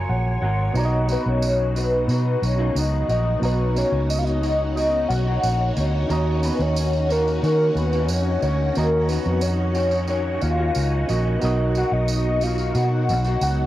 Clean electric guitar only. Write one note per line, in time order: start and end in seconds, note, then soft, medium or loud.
0.00 0.41 F#3 medium
0.00 0.43 A#3 medium
0.00 0.42 C#4 medium
0.00 0.43 F4 medium
0.41 0.75 F#3 medium
0.41 0.74 A#3 medium
0.41 0.75 C#4 medium
0.41 0.76 F4 medium
0.74 1.07 B2 medium
0.74 1.08 A#3 medium
0.74 1.08 D#4 medium
0.74 1.09 F#4 medium
1.08 1.74 B2 medium
1.08 1.78 A#3 medium
1.08 1.76 D#4 medium
1.08 1.77 F#4 medium
1.75 2.07 B2 medium
1.75 2.09 D#4 medium
1.75 2.10 F#4 medium
2.08 2.59 B2 medium
2.08 2.58 D#4 medium
2.08 2.58 F#4 medium
2.59 3.10 B2 medium
2.59 3.08 A#3 medium
2.59 3.08 D#4 medium
2.59 3.09 F#4 medium
3.09 3.42 A#3 medium
3.09 3.42 D#4 medium
3.09 3.43 F#4 medium
3.42 3.74 B2 medium
3.42 3.76 D#4 medium
3.42 3.77 F#4 medium
3.76 4.40 B2 medium
3.76 4.42 A#3 medium
3.76 4.43 D#4 medium
3.76 4.43 F#4 medium
4.41 4.74 B2 medium
4.41 4.75 A#3 medium
4.41 4.76 D#4 medium
4.41 4.77 F#4 medium
4.75 5.25 B2 medium
4.75 5.26 A#3 medium
4.75 5.26 D#4 medium
4.75 5.25 F#4 medium
5.26 5.75 A#3 medium
5.26 5.76 D#4 medium
5.26 5.76 F#4 medium
5.75 6.09 B2 medium
5.75 6.08 A#3 medium
5.75 6.10 D#4 medium
5.75 6.10 F#4 medium
6.08 6.39 D#3 medium
6.08 6.41 A#3 medium
6.08 6.41 C#4 medium
6.08 6.43 F#4 medium
6.41 7.08 D#3 medium
6.41 7.09 A#3 medium
6.41 7.09 C#4 medium
6.41 7.11 F#4 medium
7.09 7.41 D#3 medium
7.09 7.41 A#3 medium
7.09 7.42 C#4 medium
7.09 7.43 F#4 medium
7.42 7.92 D#3 medium
7.42 7.92 A#3 medium
7.42 7.92 C#4 medium
7.42 7.91 F#4 medium
7.92 8.43 D#3 medium
7.92 8.41 A#3 medium
7.92 8.42 C#4 medium
7.92 8.42 F#4 medium
8.42 8.75 A#3 medium
8.42 8.76 C#4 medium
8.42 8.77 F#4 medium
8.76 9.08 D#3 medium
8.76 9.09 A#3 medium
8.76 9.10 C#4 medium
8.76 9.10 F#4 medium
9.09 9.74 D#3 medium
9.09 9.75 C#4 medium
9.09 9.76 F#4 medium
9.75 10.06 D#3 medium
9.75 10.07 A#3 medium
9.75 10.08 C#4 medium
9.75 10.09 F#4 medium
10.07 10.58 D#3 medium
10.07 10.59 A#3 medium
10.07 10.58 C#4 medium
10.07 10.56 F#4 medium
10.58 11.07 D#3 medium
10.58 11.08 A#3 medium
10.58 11.09 C#4 medium
10.58 11.08 F#4 medium
11.08 11.42 D#3 medium
11.08 11.42 A#3 medium
11.08 11.43 C#4 medium
11.08 11.43 F#4 medium
11.41 11.74 B2 medium
11.41 11.76 A#3 medium
11.41 11.76 D#4 medium
11.41 11.77 F#4 medium
11.76 12.40 B2 medium
11.76 12.42 A#3 medium
11.76 12.42 D#4 medium
11.76 12.43 F#4 medium
12.42 12.73 B2 medium
12.42 12.74 A#3 medium
12.42 12.75 D#4 medium
12.42 12.76 F#4 medium
12.74 13.25 B2 medium
12.74 13.25 A#3 medium
12.74 13.24 D#4 medium
12.74 13.24 F#4 medium
13.25 13.66 B2 medium
13.25 13.66 A#3 medium
13.25 13.66 D#4 medium
13.25 13.66 F#4 medium